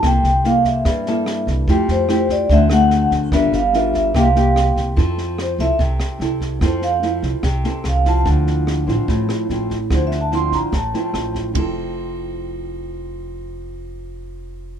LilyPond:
<<
  \new Staff \with { instrumentName = "Vibraphone" } { \time 4/4 \key f \major \tempo 4 = 146 g''4 f''8 e''2 r8 | r8 c''4 d''8 e''8 fis''4 r8 | e''8 f''8 e''8 e''8 f''4. r8 | r4 c''8 e''8 r2 |
c''8 f''8 r2 f''8 a''8 | r1 | \tuplet 3/2 { c''8 e''8 a''8 } c'''8 bes''8 a''4. r8 | r1 |
r1 | }
  \new Staff \with { instrumentName = "Nylon-string guitar" } { \time 4/4 \key f \major << { <bes e' a'>8 r8 <bes e' a'>4. <bes e' a'>4. | <a e' g'>4 <a e' g'>4 <a c' fis'>8 <a c' fis'>4. | <d' f' bes'>8 r8 <d' f' bes'>4 <bes e' g'>8 <bes g'>4. | <c' e' a'>4. <c' e' a'>4. <c' e' a'>4 |
<c' e' a'>4 <c' e' a'>4 r8 <c' e' a'>4 <f c' e'>8~ | <f c' e'>4. <f c' e'>4. <f c' e'>8 r8 | <f c' e'>8 r8 <f c' e'>4 r8 <f c' e'>4. | <f c' e' a'>1~ |
<f c' e' a'>1 | } \\ { c2 g,2 | f2 d2 | g2 c2 | f2 c2 |
f2 c2 | d2 a,2 | d2 a,2 | r1 |
r1 | } >> }
  \new Staff \with { instrumentName = "Upright bass" } { \clef bass \time 4/4 \key f \major c,8 c,4. g,4. c,8 | f,8 f,4. d,4. d,8 | g,,8 g,,4. c,4. c,8 | f,4. c,16 r16 c,8 r8 c,4 |
f,4. c,16 r16 c,8 r8 c,4 | d,4. a,,16 r16 a,,8 r8 a,,4 | d,4. a,,16 r16 a,,8 r8 a,,4 | f,,1~ |
f,,1 | }
  \new DrumStaff \with { instrumentName = "Drums" } \drummode { \time 4/4 <bd ss sn>8 sn8 sn8 <bd sn>8 <bd ss sn>8 sn8 <ss sn>8 <bd sn>8 | <bd sn>8 sn8 <ss sn>8 <bd sn>8 <bd sn>8 <ss sn>8 sn8 <bd sn>8 | <bd ss sn>8 sn8 sn8 <bd sn>8 <bd ss sn>8 sn8 <ss sn>8 <bd sn>8 | <bd sn>8 sn8 <ss sn>8 <bd sn>8 <bd sn>8 <ss sn>8 sn8 <bd sn>8 |
<bd ss sn>8 sn8 sn8 <bd sn>8 <bd ss sn>8 sn8 <ss sn>8 <bd sn>8 | <bd sn>8 sn8 <ss sn>8 <bd sn>8 <bd sn>8 <ss sn>8 sn8 <bd sn>8 | <bd ss sn>8 sn8 sn8 <bd sn>8 <bd ss sn>8 sn8 <ss sn>8 <bd sn>8 | <bd rb tomfh>4 r4 r4 r4 |
r4 r4 r4 r4 | }
>>